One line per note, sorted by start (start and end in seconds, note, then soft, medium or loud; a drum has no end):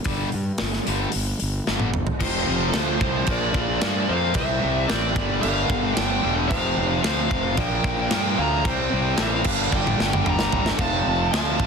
0.04 0.23 G1 medium
0.04 0.27 G2 medium
0.04 0.28 D3 medium
0.04 0.28 G3 medium
0.04 kick medium
0.04 open hi-hat medium
0.32 0.51 G2 medium
0.32 open hi-hat soft
0.58 0.78 G1 medium
0.58 snare loud
0.58 open hi-hat medium
0.73 snare soft
0.87 1.05 G1 medium
0.87 1.09 G2 medium
0.87 1.09 D3 medium
0.87 1.09 G3 medium
0.87 open hi-hat medium
1.12 1.32 G1 medium
1.12 open hi-hat medium
1.40 1.59 G1 medium
1.40 open hi-hat medium
1.67 2.03 G1 medium
1.67 1.89 G2 medium
1.67 1.89 D3 loud
1.67 1.89 G3 medium
1.67 snare medium
1.80 high tom medium
1.94 mid tom medium
2.07 floor tom medium
2.20 2.44 F1 medium
2.20 2.73 F2 medium
2.20 2.73 C3 loud
2.20 2.74 F3 loud
2.20 2.65 F4 medium
2.20 2.69 C5 medium
2.20 kick loud
2.20 crash loud
2.20 crash medium
2.48 2.71 F1 medium
2.69 2.75 F4 soft
2.69 2.76 A4 medium
2.73 2.98 D2 medium
2.73 2.99 F2 medium
2.73 3.00 C3 medium
2.73 3.00 F3 medium
2.73 3.26 F4 medium
2.73 3.31 C5 medium
2.73 snare loud
2.73 crash medium
3.00 3.24 C2 loud
3.00 3.26 F2 medium
3.00 3.26 C3 medium
3.00 3.26 F3 loud
3.00 kick medium
3.26 3.51 A#1 medium
3.26 3.81 A#2 medium
3.26 3.82 F3 medium
3.26 3.81 A#3 loud
3.26 kick loud
3.26 crash medium
3.30 4.06 A#4 medium
3.30 4.12 D5 medium
3.54 3.78 A#1 medium
3.54 kick medium
3.81 4.05 G2 medium
3.81 4.08 A#2 medium
3.81 4.08 F3 medium
3.81 4.09 A#3 loud
3.81 snare loud
3.81 crash medium
4.09 4.32 F2 loud
4.09 4.34 A#2 medium
4.09 4.34 F3 medium
4.09 4.35 A#3 medium
4.09 4.34 C5 medium
4.09 4.35 F5 medium
4.34 4.58 C2 medium
4.34 4.89 C3 medium
4.34 4.89 G3 loud
4.34 4.89 C4 loud
4.34 4.85 C5 medium
4.34 4.85 E5 loud
4.34 kick loud
4.34 crash medium
4.64 4.86 C2 medium
4.88 5.13 A1 loud
4.88 5.15 C3 medium
4.88 5.15 G3 medium
4.88 5.15 C4 medium
4.88 5.39 A#4 medium
4.88 5.38 D5 medium
4.88 snare loud
4.88 crash medium
5.15 5.38 G1 medium
5.15 5.43 G2 medium
5.15 5.44 D3 loud
5.15 5.44 G3 loud
5.15 kick loud
5.40 5.94 G2 loud
5.40 5.95 D3 loud
5.40 5.94 G3 loud
5.40 5.92 A#4 medium
5.40 5.94 F5 medium
5.40 crash medium
5.44 5.66 G1 medium
5.44 5.97 G2 medium
5.44 5.97 D3 loud
5.44 5.98 G3 loud
5.69 5.92 G1 loud
5.69 kick medium
5.94 6.23 D3 loud
5.94 6.34 D5 medium
5.94 6.32 G5 medium
5.94 snare loud
5.94 crash medium
5.98 6.20 G1 medium
5.98 6.22 G2 medium
5.98 6.23 G3 loud
6.23 6.51 E1 medium
6.23 6.48 G2 medium
6.23 6.49 D3 medium
6.23 6.49 G3 medium
6.49 6.73 F1 loud
6.49 7.04 F2 medium
6.49 7.05 C3 loud
6.49 7.05 F3 loud
6.49 7.00 C5 medium
6.49 6.99 F5 loud
6.49 kick loud
6.49 crash medium
6.78 7.00 F1 medium
7.04 7.27 D2 loud
7.04 7.30 F2 medium
7.04 7.31 C3 medium
7.04 7.31 F3 loud
7.04 7.55 C5 medium
7.04 7.58 F5 loud
7.04 snare loud
7.04 crash medium
7.31 7.57 F1 medium
7.31 7.56 F2 medium
7.31 7.56 C3 medium
7.31 7.56 F3 medium
7.31 kick medium
7.57 7.80 A#1 medium
7.57 8.11 A#2 loud
7.57 8.11 F3 medium
7.57 8.12 A#3 loud
7.57 8.34 D5 medium
7.57 8.41 G5 medium
7.57 kick loud
7.57 crash medium
7.84 8.06 A#1 medium
7.84 kick medium
8.11 8.35 G2 medium
8.11 8.38 A#2 medium
8.11 8.38 F3 medium
8.11 8.39 A#3 loud
8.11 snare loud
8.11 crash medium
8.38 8.65 D2 medium
8.38 8.63 A#2 medium
8.38 8.63 F3 medium
8.38 8.64 A#3 medium
8.38 8.63 F5 medium
8.38 8.65 A#5 loud
8.65 8.87 C2 loud
8.65 9.18 C3 loud
8.65 9.18 G3 loud
8.65 9.19 C4 loud
8.65 9.15 C5 loud
8.65 kick loud
8.65 crash medium
8.69 9.22 G5 loud
8.93 9.15 C2 medium
9.17 9.41 A1 medium
9.17 9.44 C3 medium
9.17 9.44 G3 medium
9.17 9.44 C4 medium
9.17 9.68 A#4 medium
9.17 snare loud
9.17 crash medium
9.23 9.75 F5 loud
9.44 9.68 G1 medium
9.44 9.70 G2 medium
9.44 9.71 D3 medium
9.44 9.71 G3 loud
9.44 kick loud
9.44 crash loud
9.71 9.95 G1 medium
9.71 10.24 G2 medium
9.71 10.25 D3 medium
9.71 10.25 G3 loud
9.71 10.22 D5 medium
9.71 kick medium
9.76 10.29 G5 medium
9.87 high tom medium
10.00 10.22 G1 medium
10.00 snare medium
10.13 mid tom medium
10.26 10.48 G1 medium
10.26 10.52 G2 medium
10.26 10.52 D3 medium
10.26 10.52 G3 medium
10.26 10.63 G5 medium
10.26 10.65 A#5 loud
10.26 mid tom medium
10.39 snare medium
10.52 10.75 G1 medium
10.52 10.78 G2 medium
10.52 10.78 D3 medium
10.52 10.78 G3 medium
10.52 floor tom medium
10.66 snare medium
10.78 11.01 F1 medium
10.78 11.32 F2 medium
10.78 11.33 C3 loud
10.78 11.33 F3 loud
10.78 11.30 F5 medium
10.78 11.31 A5 loud
10.78 kick loud
10.78 crash medium
11.07 11.29 F1 medium
11.32 11.56 D2 loud
11.32 11.60 F2 medium
11.32 11.60 C3 medium
11.32 11.61 F3 medium
11.32 11.67 F5 medium
11.32 11.67 A5 medium
11.32 snare loud
11.32 crash medium
11.60 11.67 A1 medium
11.60 11.67 F2 medium
11.60 11.67 C3 medium
11.60 11.67 F3 medium
11.60 kick medium